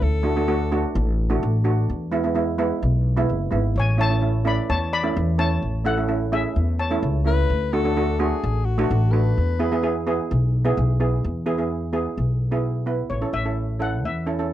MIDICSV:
0, 0, Header, 1, 5, 480
1, 0, Start_track
1, 0, Key_signature, 3, "major"
1, 0, Tempo, 467654
1, 22, Time_signature, 4, 2, 24, 8
1, 14916, End_track
2, 0, Start_track
2, 0, Title_t, "Steel pan"
2, 0, Program_c, 0, 114
2, 3876, Note_on_c, 0, 73, 76
2, 3896, Note_on_c, 0, 80, 99
2, 4087, Note_off_c, 0, 73, 0
2, 4099, Note_on_c, 0, 73, 76
2, 4115, Note_on_c, 0, 81, 108
2, 4122, Note_off_c, 0, 80, 0
2, 4544, Note_off_c, 0, 73, 0
2, 4552, Note_off_c, 0, 81, 0
2, 4583, Note_on_c, 0, 74, 71
2, 4591, Note_on_c, 0, 83, 94
2, 4802, Note_off_c, 0, 74, 0
2, 4820, Note_on_c, 0, 73, 76
2, 4822, Note_on_c, 0, 81, 112
2, 4830, Note_off_c, 0, 83, 0
2, 5041, Note_off_c, 0, 73, 0
2, 5059, Note_on_c, 0, 74, 83
2, 5064, Note_on_c, 0, 83, 99
2, 5065, Note_off_c, 0, 81, 0
2, 5503, Note_off_c, 0, 74, 0
2, 5531, Note_on_c, 0, 73, 74
2, 5532, Note_on_c, 0, 81, 103
2, 5553, Note_off_c, 0, 83, 0
2, 5978, Note_off_c, 0, 73, 0
2, 6017, Note_on_c, 0, 69, 74
2, 6017, Note_on_c, 0, 78, 92
2, 6027, Note_off_c, 0, 81, 0
2, 6462, Note_off_c, 0, 69, 0
2, 6496, Note_on_c, 0, 76, 88
2, 6505, Note_on_c, 0, 68, 69
2, 6510, Note_off_c, 0, 78, 0
2, 6945, Note_off_c, 0, 68, 0
2, 6974, Note_on_c, 0, 81, 84
2, 6982, Note_on_c, 0, 73, 67
2, 6989, Note_off_c, 0, 76, 0
2, 7420, Note_off_c, 0, 81, 0
2, 7424, Note_off_c, 0, 73, 0
2, 13443, Note_on_c, 0, 73, 80
2, 13687, Note_on_c, 0, 76, 82
2, 13696, Note_off_c, 0, 73, 0
2, 14183, Note_on_c, 0, 78, 90
2, 14186, Note_off_c, 0, 76, 0
2, 14290, Note_off_c, 0, 78, 0
2, 14424, Note_on_c, 0, 76, 86
2, 14903, Note_off_c, 0, 76, 0
2, 14916, End_track
3, 0, Start_track
3, 0, Title_t, "Alto saxophone"
3, 0, Program_c, 1, 65
3, 37, Note_on_c, 1, 69, 93
3, 988, Note_off_c, 1, 69, 0
3, 7461, Note_on_c, 1, 71, 119
3, 7938, Note_on_c, 1, 69, 104
3, 7953, Note_off_c, 1, 71, 0
3, 8413, Note_on_c, 1, 68, 94
3, 8428, Note_off_c, 1, 69, 0
3, 8884, Note_on_c, 1, 66, 94
3, 8899, Note_off_c, 1, 68, 0
3, 9363, Note_on_c, 1, 71, 100
3, 9378, Note_off_c, 1, 66, 0
3, 10326, Note_off_c, 1, 71, 0
3, 14916, End_track
4, 0, Start_track
4, 0, Title_t, "Steel pan"
4, 0, Program_c, 2, 114
4, 235, Note_on_c, 2, 57, 89
4, 242, Note_on_c, 2, 62, 85
4, 248, Note_on_c, 2, 66, 90
4, 323, Note_off_c, 2, 57, 0
4, 326, Note_off_c, 2, 62, 0
4, 330, Note_off_c, 2, 66, 0
4, 372, Note_on_c, 2, 57, 86
4, 375, Note_on_c, 2, 62, 78
4, 379, Note_on_c, 2, 66, 87
4, 448, Note_off_c, 2, 57, 0
4, 449, Note_off_c, 2, 62, 0
4, 451, Note_off_c, 2, 66, 0
4, 491, Note_on_c, 2, 57, 89
4, 495, Note_on_c, 2, 66, 99
4, 497, Note_on_c, 2, 62, 78
4, 644, Note_off_c, 2, 57, 0
4, 645, Note_off_c, 2, 66, 0
4, 647, Note_off_c, 2, 62, 0
4, 736, Note_on_c, 2, 57, 91
4, 738, Note_on_c, 2, 62, 85
4, 742, Note_on_c, 2, 66, 102
4, 1103, Note_off_c, 2, 57, 0
4, 1103, Note_off_c, 2, 62, 0
4, 1106, Note_off_c, 2, 66, 0
4, 1332, Note_on_c, 2, 57, 92
4, 1334, Note_on_c, 2, 62, 87
4, 1341, Note_on_c, 2, 66, 96
4, 1553, Note_off_c, 2, 57, 0
4, 1554, Note_off_c, 2, 62, 0
4, 1557, Note_off_c, 2, 66, 0
4, 1685, Note_on_c, 2, 57, 72
4, 1688, Note_on_c, 2, 62, 83
4, 1693, Note_on_c, 2, 66, 92
4, 1932, Note_off_c, 2, 57, 0
4, 1933, Note_off_c, 2, 62, 0
4, 1935, Note_off_c, 2, 66, 0
4, 2171, Note_on_c, 2, 56, 85
4, 2171, Note_on_c, 2, 59, 72
4, 2179, Note_on_c, 2, 64, 108
4, 2250, Note_off_c, 2, 56, 0
4, 2250, Note_off_c, 2, 59, 0
4, 2253, Note_off_c, 2, 64, 0
4, 2295, Note_on_c, 2, 56, 77
4, 2299, Note_on_c, 2, 59, 75
4, 2303, Note_on_c, 2, 64, 86
4, 2368, Note_off_c, 2, 56, 0
4, 2370, Note_off_c, 2, 59, 0
4, 2372, Note_off_c, 2, 64, 0
4, 2408, Note_on_c, 2, 56, 84
4, 2415, Note_on_c, 2, 59, 79
4, 2418, Note_on_c, 2, 64, 100
4, 2561, Note_off_c, 2, 56, 0
4, 2564, Note_off_c, 2, 59, 0
4, 2566, Note_off_c, 2, 64, 0
4, 2651, Note_on_c, 2, 56, 99
4, 2655, Note_on_c, 2, 59, 93
4, 2656, Note_on_c, 2, 64, 106
4, 3019, Note_off_c, 2, 56, 0
4, 3021, Note_off_c, 2, 59, 0
4, 3021, Note_off_c, 2, 64, 0
4, 3250, Note_on_c, 2, 56, 87
4, 3256, Note_on_c, 2, 59, 77
4, 3257, Note_on_c, 2, 64, 112
4, 3471, Note_off_c, 2, 56, 0
4, 3474, Note_off_c, 2, 59, 0
4, 3474, Note_off_c, 2, 64, 0
4, 3599, Note_on_c, 2, 56, 73
4, 3604, Note_on_c, 2, 59, 68
4, 3610, Note_on_c, 2, 64, 89
4, 3847, Note_off_c, 2, 56, 0
4, 3850, Note_off_c, 2, 59, 0
4, 3853, Note_off_c, 2, 64, 0
4, 4081, Note_on_c, 2, 57, 73
4, 4085, Note_on_c, 2, 61, 64
4, 4087, Note_on_c, 2, 64, 87
4, 4163, Note_off_c, 2, 57, 0
4, 4166, Note_off_c, 2, 61, 0
4, 4167, Note_off_c, 2, 64, 0
4, 4208, Note_on_c, 2, 57, 69
4, 4212, Note_on_c, 2, 61, 62
4, 4215, Note_on_c, 2, 64, 71
4, 4284, Note_off_c, 2, 57, 0
4, 4286, Note_off_c, 2, 61, 0
4, 4287, Note_off_c, 2, 64, 0
4, 4326, Note_on_c, 2, 57, 68
4, 4327, Note_on_c, 2, 61, 61
4, 4331, Note_on_c, 2, 64, 76
4, 4479, Note_off_c, 2, 57, 0
4, 4479, Note_off_c, 2, 61, 0
4, 4481, Note_off_c, 2, 64, 0
4, 4564, Note_on_c, 2, 57, 76
4, 4567, Note_on_c, 2, 61, 74
4, 4567, Note_on_c, 2, 64, 92
4, 4934, Note_off_c, 2, 57, 0
4, 4936, Note_off_c, 2, 61, 0
4, 4936, Note_off_c, 2, 64, 0
4, 5164, Note_on_c, 2, 57, 80
4, 5166, Note_on_c, 2, 61, 81
4, 5169, Note_on_c, 2, 64, 93
4, 5387, Note_off_c, 2, 57, 0
4, 5388, Note_off_c, 2, 61, 0
4, 5389, Note_off_c, 2, 64, 0
4, 5525, Note_on_c, 2, 57, 66
4, 5531, Note_on_c, 2, 61, 67
4, 5533, Note_on_c, 2, 64, 80
4, 5819, Note_off_c, 2, 57, 0
4, 5823, Note_off_c, 2, 61, 0
4, 5824, Note_off_c, 2, 64, 0
4, 6000, Note_on_c, 2, 57, 73
4, 6004, Note_on_c, 2, 61, 65
4, 6010, Note_on_c, 2, 64, 90
4, 6082, Note_off_c, 2, 57, 0
4, 6084, Note_off_c, 2, 61, 0
4, 6087, Note_off_c, 2, 64, 0
4, 6128, Note_on_c, 2, 57, 73
4, 6132, Note_on_c, 2, 61, 59
4, 6135, Note_on_c, 2, 64, 74
4, 6202, Note_off_c, 2, 57, 0
4, 6204, Note_off_c, 2, 61, 0
4, 6206, Note_off_c, 2, 64, 0
4, 6240, Note_on_c, 2, 57, 69
4, 6241, Note_on_c, 2, 61, 69
4, 6247, Note_on_c, 2, 64, 82
4, 6395, Note_off_c, 2, 57, 0
4, 6395, Note_off_c, 2, 61, 0
4, 6398, Note_off_c, 2, 64, 0
4, 6487, Note_on_c, 2, 57, 78
4, 6489, Note_on_c, 2, 61, 71
4, 6496, Note_on_c, 2, 64, 85
4, 6855, Note_off_c, 2, 57, 0
4, 6856, Note_off_c, 2, 61, 0
4, 6859, Note_off_c, 2, 64, 0
4, 7089, Note_on_c, 2, 57, 85
4, 7093, Note_on_c, 2, 61, 79
4, 7097, Note_on_c, 2, 64, 92
4, 7308, Note_off_c, 2, 57, 0
4, 7310, Note_off_c, 2, 61, 0
4, 7312, Note_off_c, 2, 64, 0
4, 7437, Note_on_c, 2, 57, 72
4, 7446, Note_on_c, 2, 61, 60
4, 7450, Note_on_c, 2, 64, 82
4, 7685, Note_off_c, 2, 57, 0
4, 7689, Note_off_c, 2, 61, 0
4, 7691, Note_off_c, 2, 64, 0
4, 7933, Note_on_c, 2, 57, 84
4, 7936, Note_on_c, 2, 62, 85
4, 7940, Note_on_c, 2, 66, 97
4, 8008, Note_off_c, 2, 57, 0
4, 8009, Note_off_c, 2, 62, 0
4, 8011, Note_off_c, 2, 66, 0
4, 8053, Note_on_c, 2, 57, 77
4, 8058, Note_on_c, 2, 62, 78
4, 8062, Note_on_c, 2, 66, 88
4, 8124, Note_off_c, 2, 57, 0
4, 8126, Note_off_c, 2, 62, 0
4, 8129, Note_off_c, 2, 66, 0
4, 8175, Note_on_c, 2, 57, 88
4, 8177, Note_on_c, 2, 62, 78
4, 8183, Note_on_c, 2, 66, 105
4, 8321, Note_off_c, 2, 57, 0
4, 8322, Note_off_c, 2, 62, 0
4, 8325, Note_off_c, 2, 66, 0
4, 8407, Note_on_c, 2, 57, 96
4, 8412, Note_on_c, 2, 62, 88
4, 8416, Note_on_c, 2, 66, 105
4, 8774, Note_off_c, 2, 57, 0
4, 8777, Note_off_c, 2, 62, 0
4, 8778, Note_off_c, 2, 66, 0
4, 9012, Note_on_c, 2, 57, 98
4, 9018, Note_on_c, 2, 62, 89
4, 9022, Note_on_c, 2, 66, 111
4, 9229, Note_off_c, 2, 57, 0
4, 9232, Note_off_c, 2, 62, 0
4, 9233, Note_off_c, 2, 66, 0
4, 9370, Note_on_c, 2, 57, 85
4, 9371, Note_on_c, 2, 62, 70
4, 9375, Note_on_c, 2, 66, 84
4, 9610, Note_off_c, 2, 57, 0
4, 9610, Note_off_c, 2, 62, 0
4, 9612, Note_off_c, 2, 66, 0
4, 9847, Note_on_c, 2, 59, 84
4, 9848, Note_on_c, 2, 64, 80
4, 9853, Note_on_c, 2, 68, 89
4, 9924, Note_off_c, 2, 59, 0
4, 9924, Note_off_c, 2, 64, 0
4, 9927, Note_off_c, 2, 68, 0
4, 9974, Note_on_c, 2, 59, 82
4, 9974, Note_on_c, 2, 64, 77
4, 9980, Note_on_c, 2, 68, 86
4, 10043, Note_off_c, 2, 64, 0
4, 10044, Note_off_c, 2, 59, 0
4, 10047, Note_off_c, 2, 68, 0
4, 10086, Note_on_c, 2, 59, 82
4, 10091, Note_on_c, 2, 64, 80
4, 10095, Note_on_c, 2, 68, 94
4, 10236, Note_off_c, 2, 59, 0
4, 10238, Note_off_c, 2, 64, 0
4, 10240, Note_off_c, 2, 68, 0
4, 10333, Note_on_c, 2, 59, 94
4, 10338, Note_on_c, 2, 64, 81
4, 10340, Note_on_c, 2, 68, 102
4, 10696, Note_off_c, 2, 59, 0
4, 10699, Note_off_c, 2, 64, 0
4, 10700, Note_off_c, 2, 68, 0
4, 10928, Note_on_c, 2, 59, 98
4, 10931, Note_on_c, 2, 64, 86
4, 10937, Note_on_c, 2, 68, 107
4, 11146, Note_off_c, 2, 59, 0
4, 11148, Note_off_c, 2, 64, 0
4, 11151, Note_off_c, 2, 68, 0
4, 11288, Note_on_c, 2, 59, 71
4, 11292, Note_on_c, 2, 64, 66
4, 11294, Note_on_c, 2, 68, 88
4, 11529, Note_off_c, 2, 59, 0
4, 11531, Note_off_c, 2, 64, 0
4, 11532, Note_off_c, 2, 68, 0
4, 11763, Note_on_c, 2, 59, 82
4, 11765, Note_on_c, 2, 64, 74
4, 11768, Note_on_c, 2, 68, 95
4, 11841, Note_off_c, 2, 59, 0
4, 11843, Note_off_c, 2, 64, 0
4, 11844, Note_off_c, 2, 68, 0
4, 11884, Note_on_c, 2, 59, 68
4, 11890, Note_on_c, 2, 64, 69
4, 11891, Note_on_c, 2, 68, 80
4, 12105, Note_off_c, 2, 59, 0
4, 12108, Note_off_c, 2, 64, 0
4, 12108, Note_off_c, 2, 68, 0
4, 12241, Note_on_c, 2, 59, 77
4, 12243, Note_on_c, 2, 64, 72
4, 12248, Note_on_c, 2, 68, 98
4, 12611, Note_off_c, 2, 59, 0
4, 12612, Note_off_c, 2, 64, 0
4, 12615, Note_off_c, 2, 68, 0
4, 12844, Note_on_c, 2, 59, 74
4, 12849, Note_on_c, 2, 64, 81
4, 12850, Note_on_c, 2, 68, 82
4, 13066, Note_off_c, 2, 59, 0
4, 13068, Note_off_c, 2, 64, 0
4, 13069, Note_off_c, 2, 68, 0
4, 13201, Note_on_c, 2, 59, 70
4, 13208, Note_on_c, 2, 64, 67
4, 13208, Note_on_c, 2, 71, 76
4, 13447, Note_off_c, 2, 59, 0
4, 13450, Note_off_c, 2, 64, 0
4, 13450, Note_off_c, 2, 71, 0
4, 13564, Note_on_c, 2, 64, 55
4, 13565, Note_on_c, 2, 61, 68
4, 13567, Note_on_c, 2, 69, 74
4, 13711, Note_off_c, 2, 64, 0
4, 13712, Note_off_c, 2, 61, 0
4, 13713, Note_off_c, 2, 69, 0
4, 13803, Note_on_c, 2, 61, 60
4, 13808, Note_on_c, 2, 64, 62
4, 13812, Note_on_c, 2, 69, 67
4, 14026, Note_off_c, 2, 61, 0
4, 14029, Note_off_c, 2, 64, 0
4, 14031, Note_off_c, 2, 69, 0
4, 14158, Note_on_c, 2, 61, 65
4, 14164, Note_on_c, 2, 64, 66
4, 14165, Note_on_c, 2, 69, 78
4, 14457, Note_off_c, 2, 61, 0
4, 14460, Note_off_c, 2, 64, 0
4, 14460, Note_off_c, 2, 69, 0
4, 14640, Note_on_c, 2, 61, 73
4, 14645, Note_on_c, 2, 69, 75
4, 14647, Note_on_c, 2, 64, 73
4, 14723, Note_off_c, 2, 61, 0
4, 14725, Note_off_c, 2, 69, 0
4, 14726, Note_off_c, 2, 64, 0
4, 14767, Note_on_c, 2, 61, 76
4, 14773, Note_on_c, 2, 64, 59
4, 14773, Note_on_c, 2, 69, 78
4, 14916, Note_off_c, 2, 61, 0
4, 14916, Note_off_c, 2, 64, 0
4, 14916, Note_off_c, 2, 69, 0
4, 14916, End_track
5, 0, Start_track
5, 0, Title_t, "Upright bass"
5, 0, Program_c, 3, 32
5, 19, Note_on_c, 3, 38, 97
5, 853, Note_off_c, 3, 38, 0
5, 978, Note_on_c, 3, 33, 115
5, 1395, Note_off_c, 3, 33, 0
5, 1465, Note_on_c, 3, 33, 110
5, 1879, Note_off_c, 3, 33, 0
5, 1945, Note_on_c, 3, 40, 91
5, 2775, Note_off_c, 3, 40, 0
5, 2900, Note_on_c, 3, 35, 103
5, 3316, Note_off_c, 3, 35, 0
5, 3380, Note_on_c, 3, 30, 85
5, 3595, Note_off_c, 3, 30, 0
5, 3616, Note_on_c, 3, 32, 86
5, 3832, Note_off_c, 3, 32, 0
5, 3855, Note_on_c, 3, 33, 95
5, 4689, Note_off_c, 3, 33, 0
5, 4820, Note_on_c, 3, 40, 98
5, 5234, Note_off_c, 3, 40, 0
5, 5302, Note_on_c, 3, 40, 110
5, 5716, Note_off_c, 3, 40, 0
5, 5772, Note_on_c, 3, 33, 85
5, 6606, Note_off_c, 3, 33, 0
5, 6733, Note_on_c, 3, 40, 99
5, 7150, Note_off_c, 3, 40, 0
5, 7211, Note_on_c, 3, 37, 104
5, 7629, Note_off_c, 3, 37, 0
5, 7695, Note_on_c, 3, 38, 89
5, 8527, Note_off_c, 3, 38, 0
5, 8658, Note_on_c, 3, 33, 107
5, 9072, Note_off_c, 3, 33, 0
5, 9140, Note_on_c, 3, 33, 105
5, 9553, Note_off_c, 3, 33, 0
5, 9623, Note_on_c, 3, 40, 89
5, 10451, Note_off_c, 3, 40, 0
5, 10582, Note_on_c, 3, 35, 105
5, 10994, Note_off_c, 3, 35, 0
5, 11058, Note_on_c, 3, 35, 104
5, 11472, Note_off_c, 3, 35, 0
5, 11541, Note_on_c, 3, 40, 97
5, 12371, Note_off_c, 3, 40, 0
5, 12497, Note_on_c, 3, 35, 91
5, 13330, Note_off_c, 3, 35, 0
5, 13447, Note_on_c, 3, 33, 84
5, 13559, Note_off_c, 3, 33, 0
5, 13681, Note_on_c, 3, 33, 86
5, 14412, Note_off_c, 3, 33, 0
5, 14412, Note_on_c, 3, 40, 86
5, 14916, Note_off_c, 3, 40, 0
5, 14916, End_track
0, 0, End_of_file